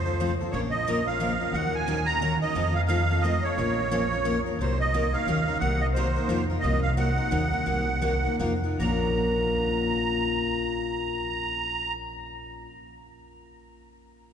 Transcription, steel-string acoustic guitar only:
0.06 C4 F4 A4
0.20 F3 A3 C4 F4 A4
0.41 C4 F4 A4
0.54 F3 A#3 C#4 F4 A#4
0.87 F3 A#3 C#4 F4 A#4
1.08 C#4 F4 A#4
1.20 F3 A#3 C#4 F4 A#4
1.41 C#4 F4 A#4
1.54 D#3 F#3 C#4 D#4 A#4
1.87 D#3 F#3 C#4 D#4 A#4
2.09 C#4 D#4 A#4
2.22 D#3 F#3 C#4 D#4 A#4
2.42 C#4 D#4 A#4
2.55 F3 A3 C4 F4 A4
2.88 F3 A3 C4 F4 A4
3.11 C4 F4 A4
3.24 F3 A3 C4 F4 A4
3.45 C4 F4 A4
3.58 F3 A#3 C#4 F4 A#4
3.91 F3 A#3 C#4 F4 A#4
4.13 C#4 F4 A#4
4.25 F3 A#3 C#4 F4 A#4
4.46 C#4 F4 A#4
4.61 C3 F#3 A#3 D#4 A#4
4.94 C3 F#3 A#3 D#4 A#4
5.14 A#3 D#4 A#4
5.28 D#3 F#3 C#4 D#4 A#4
5.48 C#4 D#4 A#4
5.61 C3 F#3 A#3 D#4 A#4
5.96 C3 F#3 A#3 D#4 A#4
6.16 A#3 D#4 A#4
6.29 F3 A#3 D#4 F4 A#4
6.50 D#4 F4 A#4
6.64 C3 F#3 A#3 D#4 A#4
6.97 C3 F#3 A#3 D#4 A#4
7.17 A#3 D#4 A#4
7.31 D#3 F#3 C#4 D#4 A#4
7.53 C#4 D#4 A#4
7.66 C3 F#3 A#3 D#4 A#4
8.01 C3 F#3 A#3 D#4 A#4
8.25 A#3 D#4 A#4
8.39 F3 A#3 D#4 F4 A#4
8.64 D#4 F4 A#4
8.80 A#2 F3 A#3 C#4 F4 A#4

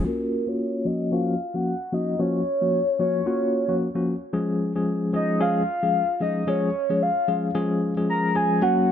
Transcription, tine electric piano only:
0.05 A#3 C#4 F4 F#4
0.47 A#3 C#4 F4 F#4
0.85 F3 A#3 C#4 F#4
1.12 F3 A#3 C#4 F#4
1.54 F3 A#3 C#4 F#4
1.92 F3 A#3 C#4 F#4
2.19 F3 A#3 C#4 F#4
2.61 F3 A#3 C#4 F#4
2.99 F3 A#3 C#4 F#4
3.26 A#3 C#4 F4 F#4
3.68 F3 A#3 C#4 F#4
3.95 F3 A#3 C#4 F#4
4.33 F3 G#3 C#4 G#4
4.75 F3 G#3 C#4 G#4
5.13 F3 G#3 C#4 G#4
5.40 F3 G#3 C#4 G#4
5.82 F3 G#3 C#4 G#4
6.21 F3 G#3 C#4 G#4
6.47 F3 G#3 C#4 G#4
6.90 F3 G#3 C#4 G#4
7.28 F3 G#3 C#4 G#4
7.54 F3 G#3 C#4 G#4
7.97 F3 G#3 C#4 G#4
8.35 F3 G#3 C#4 G#4
8.62 F#3 A#3 C#4 F#4

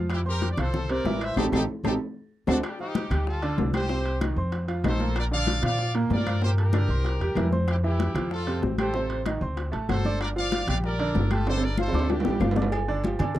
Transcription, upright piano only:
Already playing: F3 F4 F5
0.26 C4 C5 C6
0.59 F3 F4 F5
0.90 C3 C4 C5
1.06 E3 E4 E5
1.37 D#4 G4 A4
1.53 D#4 G4 A4
1.85 D#4 G4 A4
2.48 C4 D4 F#4
2.80 F3 F4 F5
3.11 G3 G4 G5
3.42 D3 D4 D5
3.74 G3 G4 G5
3.89 C3 C4 C5
4.21 D#3 D#4 D#5
4.37 C4 C5 C6
4.68 F3 F4 F5
4.84 D#3 D#4 D#5
5.00 A#3 A#4 A#5
5.31 D3 D4 D5
5.62 F3 F4 F5
5.94 A#2 A#3 A#4
6.26 F3 F4 F5
6.42 A#2 A#3 A#4
6.73 D3 D4 D5
6.89 C4 C5 C6
7.20 G3 G4 G5
7.37 E3 E4 E5
7.52 C4 C5 C6
7.83 E3 E4 E5
8.15 F3 F4 F5
8.47 C3 C4 C5
8.79 G3 G4 G5
8.95 C3 C4 C5
9.26 D#3 D#4 D#5
9.42 C4 C5 C6
9.72 A3 A4 A5
9.89 F#3 F#4 F#5
10.05 D4 D5 D6
10.36 F3 F4 F5
10.68 G3 G4 G5
10.99 D3 D4 D5
11.31 G3 G4 G5
11.47 D3 D4 D5
11.79 F3 F4 F5
11.94 D4 D5 D6
12.25 G3 G4 G5
12.41 F3 F4 F5
12.57 D4 D5 D6
12.88 D3 D4 D5
13.05 F3 F4 G4
13.20 D3 D4 D5

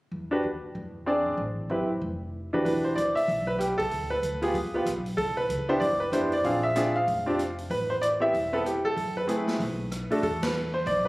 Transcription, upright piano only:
0.31 D4 F#4 G4 B4
1.06 C4 D4 G#4 D5
1.70 C4 E4 G4 B4
2.53 E3 D4 F#4 G4 B4
2.65 B4
2.84 C5
2.96 D5
3.15 E5
3.47 B4
3.59 G4
3.78 A4
4.10 B4
4.42 B3 F4 G4 G#4
4.74 B3 F4 G4 B4
5.17 A4
5.37 B4
5.68 B3 D4 E4 G4 C5
5.80 D5
6.00 B4
6.12 B3 D4 E4 G4 C5
6.33 D5
6.44 C4 D4 F4 G#4 F5
6.63 E5
6.76 C4 D4 F4 G#4
6.96 F5
7.26 C4 D4 F4 G4
7.71 B4
7.90 C5
8.02 D5
8.20 B3 C4 E4 G4 E5
8.53 B3 C4 E4 A4 B4
8.66 G4
8.85 A4
9.17 B4
9.27 A3 C4 E4 G#4
10.11 A3 D4 F#4 A4
10.23 A4
10.43 B4
10.74 C5
10.87 D5
11.05 B4

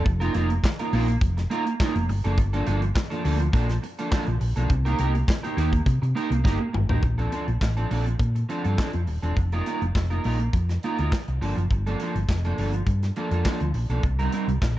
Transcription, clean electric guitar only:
0.04 muted clean electric guitar stroke
0.20 A#3 D#4 F4 A#4
0.34 A#3 D#4 F4 A#4
0.50 muted clean electric guitar stroke
0.65 muted clean electric guitar stroke
0.79 A#3 D#4 F4 A#4
0.93 A#3 D#4 F4 A#4
1.08 muted clean electric guitar stroke
1.37 muted clean electric guitar stroke
1.50 A#3 D#4 F4 A#4
1.66 muted clean electric guitar stroke
1.80 A#3 D#4 F4 A#4
1.95 muted clean electric guitar stroke
2.09 muted clean electric guitar stroke
2.24 F3 A#3 D4 A4
2.38 muted clean electric guitar stroke
2.53 F3 A#3 D4 A4
2.66 F3 A#3 D4 A4
2.82 muted clean electric guitar stroke
2.95 muted clean electric guitar stroke
3.10 F3 A#3 D4 A4
3.24 F3 A#3 D4 A4
3.39 muted clean electric guitar stroke
3.53 F3 A#3 D4 A4
3.68 muted clean electric guitar stroke
3.82 muted clean electric guitar stroke
3.99 F3 A#3 D4 A4
4.11 F3 A#3 D4 A4
4.27 muted clean electric guitar stroke
4.40 muted clean electric guitar stroke
4.56 F3 A#3 D4 A4
4.70 muted clean electric guitar stroke
4.85 A#3 D#4 G4 A#4
4.99 A#3 D#4 G4 A#4
5.14 muted clean electric guitar stroke
5.28 muted clean electric guitar stroke
5.43 A#3 D#4 G4 A#4
5.57 A#3 D#4 G4 A#4
5.72 muted clean electric guitar stroke
5.86 muted clean electric guitar stroke
6.02 muted clean electric guitar stroke
6.15 A#3 D#4 G4 A#4
6.31 muted clean electric guitar stroke
6.44 A#3 D#4 G4 A#4
6.59 muted clean electric guitar stroke
6.73 muted clean electric guitar stroke
6.89 A#3 D#4 G4 A#4
7.03 muted clean electric guitar stroke
7.18 F3 C4 D4 A4
7.32 F3 C4 D4 A4
7.47 muted clean electric guitar stroke
7.62 muted clean electric guitar stroke
7.77 F3 C4 D4 A4
7.90 F3 C4 D4 A4
8.06 muted clean electric guitar stroke
8.20 muted clean electric guitar stroke
8.35 muted clean electric guitar stroke
8.49 F3 C4 D4 A4
8.64 F3 C4 D4 A4
8.77 F3 C4 D4 A4
8.93 muted clean electric guitar stroke
9.07 muted clean electric guitar stroke
9.22 F3 C4 D4 A4
9.37 muted clean electric guitar stroke
9.53 A#3 D#4 F4 A#4
9.67 A#3 D#4 F4 A#4
9.82 muted clean electric guitar stroke
9.95 muted clean electric guitar stroke
10.10 A#3 D#4 F4 A#4
10.25 A#3 D#4 F4 A#4
10.40 muted clean electric guitar stroke
10.53 muted clean electric guitar stroke
10.69 muted clean electric guitar stroke
10.84 A#3 D#4 F4 A#4
10.99 A#3 D#4 F4 A#4
11.28 muted clean electric guitar stroke
11.41 F3 A#3 D4 A4
11.57 muted clean electric guitar stroke
11.71 muted clean electric guitar stroke
11.86 F3 A#3 D4 A4
12.00 F3 A#3 D4 A4
12.16 muted clean electric guitar stroke
12.29 muted clean electric guitar stroke
12.45 F3 A#3 D4 A4
12.58 F3 A#3 D4 A4
12.74 muted clean electric guitar stroke
12.87 muted clean electric guitar stroke
13.03 muted clean electric guitar stroke
13.16 F3 A#3 D4 A4
13.32 F3 A#3 D4 A4
13.46 F3 A#3 D4 A4
13.62 muted clean electric guitar stroke
13.75 muted clean electric guitar stroke
13.90 F3 A#3 D4 A4
14.04 muted clean electric guitar stroke
14.19 G3 C4 D#4 A#4
14.33 G3 C4 D#4 A#4
14.48 muted clean electric guitar stroke
14.62 muted clean electric guitar stroke

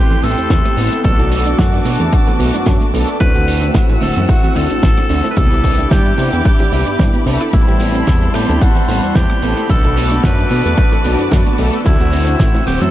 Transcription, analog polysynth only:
Already playing: A3 C4 E4 G4
0.77 B3 C4 E4 A4
1.03 A3 B3 D4 F#4
2.93 A3 B3 D4 A4
3.20 A3 C4 E4 F#4
5.09 A3 C4 E4 A4
5.36 B3 D4 E4 G4
7.26 B3 D4 E4 A4
7.52 G3 B3 C4 E4
9.42 B3 C4 E4 A4
9.68 A3 B3 D4 F#4
11.58 A3 B3 D4 A4
11.85 A3 C4 E4 F#4

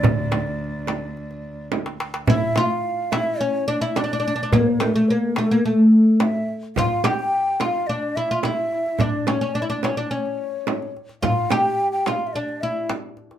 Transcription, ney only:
Already playing: D5
2.27 E5
2.55 E5
2.66 F5
3.11 E5
3.39 C#5
3.68 D5
3.82 E5
3.96 D5
4.53 A#4
4.59 A4
4.66 C#5
4.70 A#4
4.95 A4
5.09 C#5
5.13 A#4
5.35 A4
5.63 A4
6.21 E5 F5
6.76 F5
7.04 G5
7.60 F#5
7.65 F5
7.87 D5
8.16 E5
8.43 E5
8.98 E5
9.03 D5
9.27 D5
9.31 C#5
9.54 D5
9.68 D5
9.83 C#5
9.97 D5
10.10 D5
10.14 C#5
11.22 F5
11.51 G5 A5
11.92 G5
12.06 F5 F#5
12.27 E5
12.33 D5
12.61 E5

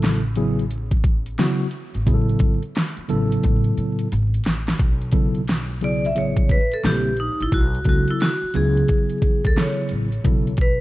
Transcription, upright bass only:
Already playing: A1
1.95 G#1
2.07 A1
2.40 G#1
2.97 muted upright bass stroke
3.09 A1
3.44 A2
3.77 A2
4.12 G#1
4.46 A1
4.80 B1
6.16 A1
6.84 A#1
7.40 A1
7.52 B1
7.85 C#2
8.43 muted upright bass stroke
8.55 C#2
9.45 D2
9.91 A1
10.25 B1

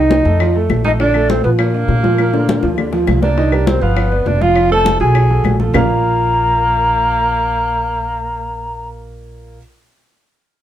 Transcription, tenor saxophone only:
Already playing: D#4
0.85 D#4
1.00 D4
1.30 C4
1.44 B3
1.59 A#3
3.23 D4
3.67 C4
3.82 B3
4.27 D4
4.42 F4
4.72 A4
5.01 G#4
5.74 A#3

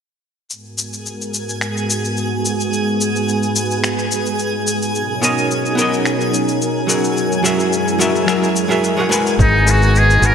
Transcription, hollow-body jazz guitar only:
5.21 B3 F#4 A#4 C#5 D#5
5.75 B3 F#4 A#4
5.80 C#5 D#5
6.87 F#3 F#4 G#4 A#4 F#5
7.43 F#3 F#4 G#4 A#4 E5
7.98 F#3 F#4 G#4 A#4 E5
8.26 F#3 F#4 G#4 A#4 E5
8.68 F#3 F#4 G#4 A#4 E5
8.97 F#3 F#4 G#4 A#4 F#5
9.09 G#3 G#4 A#4 B4 F#5
9.65 G#3 G#4 A#4 B4 F#5
10.19 G#3 F#4 G#4
10.24 B4 F#5

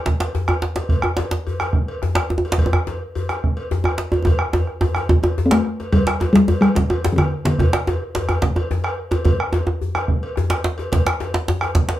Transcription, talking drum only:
5.46 C4
5.52 A3
5.92 G3
6.33 G3
6.61 G3
6.75 E3
7.13 D3 E3
7.45 D3
7.60 C3

